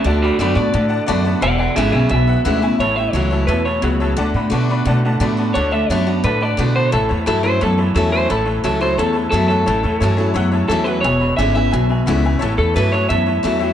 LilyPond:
<<
  \new Staff \with { instrumentName = "Honky-tonk piano" } { \time 4/4 \key a \major \tempo 4 = 175 <d'' fis'' a''>8 <d'' fis'' b''>8 <d'' fis'' b''>8 <d'' fis'' a''>8 <d'' fis'' a''>8 <d'' fis'' a''>8 <d'' fis'' a''>8 <d'' fis'' a''>8 | <b' e'' gis''>8 <b' e'' gis''>8 <b' e'' gis''>8 <b' e'' gis''>8 <b' e'' gis''>8 <b' e'' fis''>8 <b' e'' fis''>8 <b' e'' gis''>8 | <cis'' e'' a''>8 <cis'' e'' g''>8 <cis'' e'' fis''>8 <cis'' e'' a''>8 <cis'' e'' a''>8 <cis'' e'' a''>8 <cis'' e'' fis''>8 <cis'' e'' a''>8 | <d'' fis'' a''>8 <d'' fis'' b''>8 <d'' fis'' a''>8 <d'' fis'' b''>8 <d'' fis'' a''>8 <d'' fis'' a''>8 <d'' fis'' a''>8 <d'' fis'' a''>8 |
<d'' fis'' a''>8 <d'' fis'' a''>8 <d'' fis'' a''>8 <d'' fis'' a''>8 <d'' fis'' a''>8 <d'' fis'' a''>8 <d'' fis'' a''>8 <d'' fis'' a''>8 | <cis'' e'' a''>8 <cis'' e'' a''>8 <cis'' e'' b''>8 <cis'' e'' a''>8 <cis'' e'' a''>8 <cis'' e'' a''>8 <cis'' e'' a''>8 <cis'' e'' a''>8 | <cis'' e'' b''>8 <cis'' e'' a''>8 <cis'' e'' a''>8 <cis'' e'' a''>8 <cis'' e'' a''>8 <cis'' e'' a''>8 <cis'' e'' a''>8 <cis'' e'' a''>8 | <cis'' e'' a''>8 <cis'' e'' a''>8 <cis'' e'' a''>8 <cis'' e'' a''>8 <cis'' e'' fis''>8 <cis'' e'' a''>8 <cis'' e'' a''>8 <cis'' e'' fis''>8 |
<b' e'' gis''>8 <b' e'' b''>8 <b' e'' gis''>8 <b' e'' gis''>8 <b' e'' gis''>8 <b' e'' gis''>8 <b' e'' fis''>8 <b' e'' gis''>8 | <cis'' e'' a''>8 <cis'' e'' a''>8 <cis'' e'' a''>8 <cis'' e'' a''>8 <cis'' e'' a''>8 <cis'' e'' a''>8 <cis'' e'' a''>8 <cis'' e'' g''>8 | }
  \new Staff \with { instrumentName = "Clean electric guitar" } { \time 4/4 \key a \major <fis' d''>8 <fis' d''>8 <fis' d''>8 d''2 r8 | <d'' fis''>8 <d'' fis''>8 <gis' e''>8 <gis' e''>8 e''2 | cis''8 e''8 cis''4 b'8 cis''8 r4 | r1 |
cis''8 e''8 cis''4 b'8 d''8 r8 c''8 | a'8 r8 a'8 c''8 a'8 r8 a'8 c''8 | a'8 r8 a'8 c''8 a'8 r8 a'8 a'8~ | a'2 r4 a'8 b'8 |
cis''4 e''8 e''4 r4. | r8 a'8 b'8 cis''8 e''2 | }
  \new Staff \with { instrumentName = "Steel-string acoustic guitar" } { \time 4/4 \key a \major << { r4 <d a d' fis'>8 <d' fis'>8 r4 <d a d' fis'>8 <d' fis'>8 | r4 <d gis b e'>8 <b e'>8 r4 <d gis b e'>8 <b e'>8 | r4 <e a cis' e'>4 r2 | r4 <d a d' fis'>4 r4 <d a d' fis'>8 <d' fis'>8 |
r4 <d a d' fis'>8 <d' fis'>8 r4 <d a d' fis'>4 | r4 <e a cis' e'>8 <cis' e'>8 r4 <e a cis' e'>4 | r4 <e a cis' e'>8 <cis' e'>8 r4 <e a cis' e'>8 <cis' e'>8 | r4 <e a cis' e'>8 <cis' e'>8 r4 <e a cis' e'>8 <cis' e'>8 |
r4 <d gis b e'>8 <b e'>8 r4 <d gis b e'>8 <b e'>8 | r4 <e a cis' e'>8 <cis' e'>8 r4 <e a cis' e'>8 <cis' e'>8 | } \\ { d2 a,2 | e,2 b,2 | a,2 b,4 cis4 | d2 a,2 |
d2 a,2 | a,2 e,2 | a,2 e,2 | a,2 e,2 |
e,2 b,2 | a,2 e,2 | } >> }
  \new Staff \with { instrumentName = "Clean electric guitar" } { \clef bass \time 4/4 \key a \major <d a>4 <d b>8 <d b>8 <d a>4 <d b>8 <d b>8 | <e, b,>4 <e, cis>8 <e, cis>8 <e, b,>4 <e, cis>8 <e, cis>8 | <a, e>8 <a, e>8 <a, fis>8 <a, fis>8 <a, e>8 <a, e>8 <a, fis>8 <a, fis>8 | <d a>8 <d a>8 <d b>8 <d b>8 <d a>8 <d a>8 <d b>8 <d b>8 |
<d a>8 <d a>8 <d b>8 <d b>8 <d a>8 <d a>8 <d b>8 <d b>8 | <a, e>8 <a, e>8 <a, fis>8 <a, fis>8 <a, e>8 <a, e>8 <a, fis>8 <a, fis>8 | <a, e>8 <a, e>8 <a, fis>8 <a, fis>8 <a, e>8 <a, e>8 <a, fis>8 <a, fis>8 | <a, e>8 <a, e>8 <a, fis>8 <a, fis>8 <a, e>8 <a, e>8 <a, fis>8 <a, fis>8 |
<e, b,>8 <e, b,>8 <e, cis>8 <e, cis>8 <e, b,>8 <e, b,>8 <e, cis>8 <e, cis>8 | <a, e>8 <a, e>8 <a, fis>8 <a, fis>8 <a, e>8 <a, e>8 <a, fis>8 <a, fis>8 | }
  \new Staff \with { instrumentName = "Upright bass" } { \clef bass \time 4/4 \key a \major d,4 fis,8 a,8 a,4 fis,4 | e,,4 gis,,8 b,,8 b,,4 d,4 | a,,4 cis,4 e,4 cis,4 | d,8 a,8 b,4 b,4 a,4 |
d,4 fis,4 a,4 b,4 | a,,8 e,8 g,4 fis,4 e,4 | a,,4 cis,4 e,4 fis,4 | a,,8 e,8 g,4 fis,4 e,4 |
e,,4 gis,,4 b,,4 cis,4 | a,,8 e,8 g,4 fis,4 e,4 | }
>>